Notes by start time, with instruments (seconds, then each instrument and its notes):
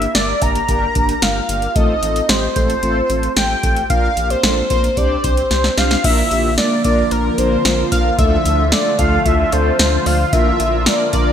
Already playing: analog synth lead E5
0.02 closed hi-hat
0.15 analog synth bass G1, analog polysynth A#3 D4 G4 A#4, analog synth lead D5, snare, closed hi-hat
0.42 analog synth bass G1, analog polysynth A#3 D4 G4 A#4, analog synth lead A#5, kick, closed hi-hat
0.55 closed hi-hat
0.69 analog synth bass G1, analog polysynth A#3 D4 G4 A#4, kick, closed hi-hat
0.95 analog synth bass G1, analog polysynth A#3 D4 G4 A#4, kick, closed hi-hat
1.09 closed hi-hat
1.22 analog synth bass G1, analog polysynth A#3 D4 G4 A#4, analog synth lead F5, snare, closed hi-hat
1.49 analog synth bass G1, analog polysynth A#3 D4 G4 A#4, closed hi-hat
1.62 closed hi-hat
1.76 analog synth bass A1, analog polysynth A3 C4 F4 A4, analog synth lead D#5, kick, closed hi-hat
2.02 analog synth bass A1, analog polysynth A3 C4 F4 A4, closed hi-hat
2.16 closed hi-hat
2.29 analog synth bass A1, analog polysynth A3 C4 F4 G4, analog synth lead C5, snare, closed hi-hat
2.56 analog synth bass A1, analog polysynth A3 C4 F4 A4, analog synth lead C5, kick, closed hi-hat
2.70 closed hi-hat
2.83 analog synth bass A1, analog polysynth A3 C4 F4 A4, closed hi-hat
3.10 analog synth bass A1, analog polysynth A3 C4 F4 A4, closed hi-hat
3.23 closed hi-hat
3.36 analog synth bass A1, analog polysynth A3 C4 F4 A4, analog synth lead G5, snare, closed hi-hat
3.63 analog synth bass A1, analog polysynth A3 C4 F4 A4, kick, closed hi-hat
3.76 closed hi-hat
3.90 analog synth bass A#1, analog polysynth A#3 D4 F4 A#4, analog synth lead F5, kick, closed hi-hat
4.17 analog synth bass A#1, analog polysynth A#3 D4 F4 G4, closed hi-hat
4.30 analog synth lead C5, closed hi-hat
4.43 analog synth bass A#1, analog polysynth A#3 D4 F4 A4, snare, closed hi-hat
4.70 analog synth bass A#1, analog polysynth A#3 D4 F4 A#4, analog synth lead C5, kick, closed hi-hat
4.84 closed hi-hat
4.97 analog synth bass C2, analog polysynth C4 D4 G4 C5, analog synth lead D5, kick, closed hi-hat
5.24 analog synth bass C2, analog polysynth C4 D4 G4 C5, analog synth lead C5, kick, closed hi-hat
5.37 closed hi-hat
5.51 analog synth bass C2, analog polysynth C4 D4 G4 C5, snare, closed hi-hat
5.64 snare
5.77 analog synth bass C2, analog polysynth C4 D4 G4 C5, analog synth lead F5, snare, closed hi-hat
5.91 snare, closed hi-hat
6.04 analog synth bass A#1, analog synth pad D3 F3 A#3 F4, analog polysynth A#3 D4 F4 A#4, analog synth lead E5, kick, closed hi-hat, crash
6.31 analog synth bass A#1, analog polysynth A#3 D4 F4 G4, closed hi-hat
6.58 analog polysynth A#3 D4 F4 A#4, analog synth lead D5, snare, closed hi-hat
6.84 analog synth bass A#1, analog polysynth A#3 D4 F4 A#4, analog synth lead D5, kick, closed hi-hat
7.11 analog synth bass A#1, analog polysynth A#3 D4 F4 A#4, analog synth lead A#4, closed hi-hat
7.38 analog synth bass A#1, analog polysynth A#3 D4 F4 A#4, analog synth lead C5, closed hi-hat
7.65 analog synth bass A#1, analog polysynth A#3 D4 F4 A#4, snare, closed hi-hat
7.92 analog synth bass A#1, analog polysynth A#3 D4 F4 A#4, analog synth lead F5, kick, closed hi-hat
8.18 analog synth bass D2, analog synth pad A3, analog polysynth A3 D4 F4 A4, analog synth lead E5, kick, closed hi-hat
8.45 analog synth bass D2, analog polysynth A3 D4 F4 A4, closed hi-hat
8.72 analog polysynth A3 D4 F4 A4, analog synth lead D5, snare, closed hi-hat
8.99 analog synth bass D2, analog polysynth A3 D4 F4 A4, analog synth lead F5, kick, closed hi-hat
9.26 analog synth bass D2, analog polysynth A3 D4 F4 A4, analog synth lead E5, kick, closed hi-hat
9.52 analog synth bass D2, analog polysynth A3 D4 F4 A4, analog synth lead C5, closed hi-hat
9.79 analog synth bass D2, analog polysynth A3 D4 F4 A4, snare, closed hi-hat
10.06 analog synth bass D2, analog polysynth A3 D4 F4 C5, analog synth lead F5, open hi-hat
10.33 analog synth bass A#1, analog synth pad F3 A#3, analog polysynth A#3 D4 F4 A#4, analog synth lead E5, kick, closed hi-hat
10.60 analog synth bass A#1, analog polysynth A#3 D4 F4 A#4, closed hi-hat
10.86 analog polysynth A#3 D4 F4 A#4, analog synth lead D5, snare, closed hi-hat
11.13 analog synth bass A#1, analog polysynth A#3 D4 F4 A#4, analog synth lead D5, kick, closed hi-hat